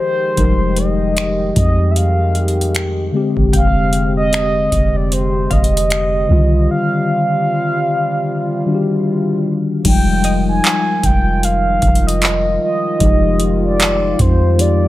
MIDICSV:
0, 0, Header, 1, 7, 480
1, 0, Start_track
1, 0, Tempo, 789474
1, 228, Time_signature, 4, 2, 24, 8
1, 9047, End_track
2, 0, Start_track
2, 0, Title_t, "Synth pluck"
2, 0, Program_c, 0, 84
2, 2146, Note_on_c, 0, 79, 57
2, 2911, Note_off_c, 0, 79, 0
2, 3347, Note_on_c, 0, 77, 65
2, 4043, Note_off_c, 0, 77, 0
2, 6229, Note_on_c, 0, 75, 75
2, 6993, Note_off_c, 0, 75, 0
2, 9047, End_track
3, 0, Start_track
3, 0, Title_t, "Soft synth lead"
3, 0, Program_c, 1, 80
3, 0, Note_on_c, 1, 72, 96
3, 476, Note_on_c, 1, 75, 99
3, 485, Note_off_c, 1, 72, 0
3, 952, Note_off_c, 1, 75, 0
3, 957, Note_on_c, 1, 75, 92
3, 1163, Note_on_c, 1, 76, 63
3, 1172, Note_off_c, 1, 75, 0
3, 1196, Note_on_c, 1, 77, 90
3, 1205, Note_off_c, 1, 76, 0
3, 1672, Note_off_c, 1, 77, 0
3, 2159, Note_on_c, 1, 77, 111
3, 2509, Note_off_c, 1, 77, 0
3, 2536, Note_on_c, 1, 75, 104
3, 3017, Note_on_c, 1, 74, 88
3, 3027, Note_off_c, 1, 75, 0
3, 3118, Note_on_c, 1, 72, 97
3, 3127, Note_off_c, 1, 74, 0
3, 3358, Note_on_c, 1, 75, 110
3, 3367, Note_off_c, 1, 72, 0
3, 4073, Note_off_c, 1, 75, 0
3, 4080, Note_on_c, 1, 77, 109
3, 5490, Note_off_c, 1, 77, 0
3, 5998, Note_on_c, 1, 79, 113
3, 6348, Note_off_c, 1, 79, 0
3, 6377, Note_on_c, 1, 80, 110
3, 6719, Note_on_c, 1, 79, 112
3, 6728, Note_off_c, 1, 80, 0
3, 6957, Note_on_c, 1, 77, 114
3, 6966, Note_off_c, 1, 79, 0
3, 7337, Note_on_c, 1, 75, 109
3, 7346, Note_off_c, 1, 77, 0
3, 7673, Note_off_c, 1, 75, 0
3, 7678, Note_on_c, 1, 75, 113
3, 8268, Note_off_c, 1, 75, 0
3, 8298, Note_on_c, 1, 74, 95
3, 8639, Note_on_c, 1, 72, 96
3, 8648, Note_off_c, 1, 74, 0
3, 8880, Note_on_c, 1, 74, 101
3, 8889, Note_off_c, 1, 72, 0
3, 9047, Note_off_c, 1, 74, 0
3, 9047, End_track
4, 0, Start_track
4, 0, Title_t, "French horn section"
4, 0, Program_c, 2, 60
4, 0, Note_on_c, 2, 51, 73
4, 0, Note_on_c, 2, 56, 67
4, 0, Note_on_c, 2, 67, 78
4, 1885, Note_off_c, 2, 51, 0
4, 1885, Note_off_c, 2, 56, 0
4, 1909, Note_on_c, 2, 60, 68
4, 1910, Note_on_c, 2, 48, 77
4, 1910, Note_on_c, 2, 56, 64
4, 3805, Note_off_c, 2, 67, 0
4, 3809, Note_off_c, 2, 60, 0
4, 3810, Note_off_c, 2, 56, 0
4, 3829, Note_on_c, 2, 55, 69
4, 3829, Note_on_c, 2, 65, 78
4, 5884, Note_off_c, 2, 48, 0
4, 5884, Note_off_c, 2, 55, 0
4, 5884, Note_off_c, 2, 65, 0
4, 5987, Note_on_c, 2, 65, 83
4, 5988, Note_on_c, 2, 53, 68
4, 5989, Note_on_c, 2, 51, 75
4, 9047, Note_off_c, 2, 51, 0
4, 9047, Note_off_c, 2, 53, 0
4, 9047, Note_off_c, 2, 65, 0
4, 9047, End_track
5, 0, Start_track
5, 0, Title_t, "Tine electric piano"
5, 0, Program_c, 3, 4
5, 0, Control_c, 3, 64, 127
5, 0, Note_on_c, 3, 53, 59
5, 0, Note_on_c, 3, 56, 57
5, 0, Note_on_c, 3, 63, 57
5, 0, Note_on_c, 3, 67, 66
5, 198, Note_off_c, 3, 53, 0
5, 207, Note_off_c, 3, 63, 0
5, 211, Note_off_c, 3, 67, 0
5, 218, Note_on_c, 3, 53, 61
5, 222, Note_off_c, 3, 56, 0
5, 226, Note_on_c, 3, 55, 46
5, 235, Note_on_c, 3, 63, 58
5, 244, Note_on_c, 3, 70, 69
5, 267, Note_on_c, 3, 56, 59
5, 273, Note_off_c, 3, 55, 0
5, 1879, Note_off_c, 3, 53, 0
5, 1887, Note_off_c, 3, 63, 0
5, 1892, Note_off_c, 3, 70, 0
5, 1898, Note_on_c, 3, 50, 78
5, 1900, Note_off_c, 3, 56, 0
5, 1907, Note_on_c, 3, 56, 76
5, 1916, Note_on_c, 3, 60, 74
5, 1917, Control_c, 3, 64, 0
5, 1925, Note_on_c, 3, 67, 85
5, 2010, Control_c, 3, 64, 127
5, 3799, Note_off_c, 3, 50, 0
5, 3803, Note_off_c, 3, 56, 0
5, 3808, Note_off_c, 3, 60, 0
5, 3812, Note_off_c, 3, 67, 0
5, 3819, Note_on_c, 3, 51, 67
5, 3827, Note_on_c, 3, 55, 61
5, 3836, Control_c, 3, 64, 0
5, 3836, Note_on_c, 3, 50, 60
5, 3845, Note_on_c, 3, 65, 74
5, 3927, Control_c, 3, 64, 127
5, 5239, Note_off_c, 3, 51, 0
5, 5243, Note_off_c, 3, 55, 0
5, 5248, Note_off_c, 3, 50, 0
5, 5252, Note_off_c, 3, 65, 0
5, 5264, Note_on_c, 3, 51, 58
5, 5269, Note_on_c, 3, 55, 58
5, 5273, Note_on_c, 3, 62, 54
5, 5277, Note_on_c, 3, 66, 52
5, 5317, Note_on_c, 3, 67, 67
5, 5318, Note_off_c, 3, 66, 0
5, 5977, Note_on_c, 3, 53, 64
5, 5986, Note_off_c, 3, 51, 0
5, 5986, Note_on_c, 3, 56, 56
5, 5988, Note_off_c, 3, 55, 0
5, 5991, Note_off_c, 3, 62, 0
5, 5994, Note_on_c, 3, 63, 61
5, 5995, Control_c, 3, 64, 0
5, 6004, Note_on_c, 3, 55, 70
5, 6013, Note_off_c, 3, 67, 0
5, 6111, Control_c, 3, 64, 127
5, 7879, Note_off_c, 3, 53, 0
5, 7883, Note_off_c, 3, 56, 0
5, 7887, Note_off_c, 3, 63, 0
5, 7892, Note_off_c, 3, 55, 0
5, 7896, Note_on_c, 3, 53, 65
5, 7905, Note_on_c, 3, 56, 62
5, 7913, Note_on_c, 3, 63, 62
5, 7922, Note_on_c, 3, 67, 76
5, 8843, Note_off_c, 3, 53, 0
5, 8847, Note_off_c, 3, 56, 0
5, 8851, Note_off_c, 3, 63, 0
5, 8856, Note_off_c, 3, 67, 0
5, 8863, Note_on_c, 3, 53, 48
5, 8866, Note_on_c, 3, 56, 44
5, 8871, Note_on_c, 3, 63, 46
5, 8875, Note_on_c, 3, 67, 50
5, 9047, Note_off_c, 3, 53, 0
5, 9047, Note_off_c, 3, 56, 0
5, 9047, Note_off_c, 3, 63, 0
5, 9047, Note_off_c, 3, 67, 0
5, 9047, End_track
6, 0, Start_track
6, 0, Title_t, "808-style bass"
6, 0, Program_c, 4, 38
6, 229, Note_on_c, 4, 29, 112
6, 924, Note_off_c, 4, 29, 0
6, 950, Note_on_c, 4, 41, 100
6, 1885, Note_off_c, 4, 41, 0
6, 2049, Note_on_c, 4, 29, 99
6, 2145, Note_off_c, 4, 29, 0
6, 2150, Note_on_c, 4, 29, 102
6, 2845, Note_off_c, 4, 29, 0
6, 2870, Note_on_c, 4, 29, 101
6, 3330, Note_off_c, 4, 29, 0
6, 3351, Note_on_c, 4, 29, 104
6, 3810, Note_off_c, 4, 29, 0
6, 3830, Note_on_c, 4, 36, 99
6, 4060, Note_off_c, 4, 36, 0
6, 5988, Note_on_c, 4, 29, 106
6, 6449, Note_off_c, 4, 29, 0
6, 6709, Note_on_c, 4, 29, 102
6, 7169, Note_off_c, 4, 29, 0
6, 7189, Note_on_c, 4, 29, 104
6, 7649, Note_off_c, 4, 29, 0
6, 7907, Note_on_c, 4, 29, 110
6, 8603, Note_off_c, 4, 29, 0
6, 8630, Note_on_c, 4, 41, 101
6, 9047, Note_off_c, 4, 41, 0
6, 9047, End_track
7, 0, Start_track
7, 0, Title_t, "Drums"
7, 227, Note_on_c, 9, 42, 69
7, 229, Note_on_c, 9, 36, 112
7, 288, Note_off_c, 9, 42, 0
7, 289, Note_off_c, 9, 36, 0
7, 465, Note_on_c, 9, 42, 58
7, 526, Note_off_c, 9, 42, 0
7, 709, Note_on_c, 9, 42, 73
7, 717, Note_on_c, 9, 26, 109
7, 770, Note_off_c, 9, 42, 0
7, 778, Note_off_c, 9, 26, 0
7, 949, Note_on_c, 9, 36, 89
7, 949, Note_on_c, 9, 42, 70
7, 1010, Note_off_c, 9, 36, 0
7, 1010, Note_off_c, 9, 42, 0
7, 1192, Note_on_c, 9, 42, 73
7, 1253, Note_off_c, 9, 42, 0
7, 1429, Note_on_c, 9, 42, 41
7, 1489, Note_off_c, 9, 42, 0
7, 1509, Note_on_c, 9, 42, 56
7, 1569, Note_off_c, 9, 42, 0
7, 1589, Note_on_c, 9, 42, 67
7, 1649, Note_off_c, 9, 42, 0
7, 1669, Note_on_c, 9, 42, 68
7, 1679, Note_on_c, 9, 26, 104
7, 1730, Note_off_c, 9, 42, 0
7, 1739, Note_off_c, 9, 26, 0
7, 2048, Note_on_c, 9, 36, 87
7, 2108, Note_off_c, 9, 36, 0
7, 2149, Note_on_c, 9, 36, 119
7, 2149, Note_on_c, 9, 42, 70
7, 2210, Note_off_c, 9, 36, 0
7, 2210, Note_off_c, 9, 42, 0
7, 2388, Note_on_c, 9, 42, 59
7, 2448, Note_off_c, 9, 42, 0
7, 2631, Note_on_c, 9, 42, 71
7, 2640, Note_on_c, 9, 26, 115
7, 2692, Note_off_c, 9, 42, 0
7, 2700, Note_off_c, 9, 26, 0
7, 2870, Note_on_c, 9, 36, 84
7, 2871, Note_on_c, 9, 42, 72
7, 2930, Note_off_c, 9, 36, 0
7, 2932, Note_off_c, 9, 42, 0
7, 3112, Note_on_c, 9, 42, 72
7, 3173, Note_off_c, 9, 42, 0
7, 3348, Note_on_c, 9, 42, 41
7, 3350, Note_on_c, 9, 36, 103
7, 3409, Note_off_c, 9, 42, 0
7, 3410, Note_off_c, 9, 36, 0
7, 3429, Note_on_c, 9, 42, 59
7, 3490, Note_off_c, 9, 42, 0
7, 3508, Note_on_c, 9, 42, 71
7, 3569, Note_off_c, 9, 42, 0
7, 3589, Note_on_c, 9, 42, 68
7, 3599, Note_on_c, 9, 26, 100
7, 3650, Note_off_c, 9, 42, 0
7, 3660, Note_off_c, 9, 26, 0
7, 5988, Note_on_c, 9, 42, 72
7, 5988, Note_on_c, 9, 49, 99
7, 5989, Note_on_c, 9, 36, 121
7, 6049, Note_off_c, 9, 36, 0
7, 6049, Note_off_c, 9, 42, 0
7, 6049, Note_off_c, 9, 49, 0
7, 6225, Note_on_c, 9, 42, 60
7, 6286, Note_off_c, 9, 42, 0
7, 6468, Note_on_c, 9, 42, 77
7, 6477, Note_on_c, 9, 39, 114
7, 6529, Note_off_c, 9, 42, 0
7, 6538, Note_off_c, 9, 39, 0
7, 6708, Note_on_c, 9, 36, 88
7, 6709, Note_on_c, 9, 42, 69
7, 6769, Note_off_c, 9, 36, 0
7, 6770, Note_off_c, 9, 42, 0
7, 6951, Note_on_c, 9, 42, 76
7, 7012, Note_off_c, 9, 42, 0
7, 7187, Note_on_c, 9, 42, 45
7, 7189, Note_on_c, 9, 36, 109
7, 7247, Note_off_c, 9, 42, 0
7, 7249, Note_off_c, 9, 36, 0
7, 7268, Note_on_c, 9, 42, 58
7, 7329, Note_off_c, 9, 42, 0
7, 7348, Note_on_c, 9, 42, 71
7, 7408, Note_off_c, 9, 42, 0
7, 7428, Note_on_c, 9, 42, 70
7, 7437, Note_on_c, 9, 39, 106
7, 7489, Note_off_c, 9, 42, 0
7, 7498, Note_off_c, 9, 39, 0
7, 7906, Note_on_c, 9, 42, 70
7, 7907, Note_on_c, 9, 36, 127
7, 7967, Note_off_c, 9, 42, 0
7, 7968, Note_off_c, 9, 36, 0
7, 8145, Note_on_c, 9, 42, 56
7, 8205, Note_off_c, 9, 42, 0
7, 8388, Note_on_c, 9, 42, 80
7, 8397, Note_on_c, 9, 39, 120
7, 8449, Note_off_c, 9, 42, 0
7, 8458, Note_off_c, 9, 39, 0
7, 8628, Note_on_c, 9, 36, 90
7, 8629, Note_on_c, 9, 42, 72
7, 8689, Note_off_c, 9, 36, 0
7, 8690, Note_off_c, 9, 42, 0
7, 8872, Note_on_c, 9, 42, 72
7, 8933, Note_off_c, 9, 42, 0
7, 9047, End_track
0, 0, End_of_file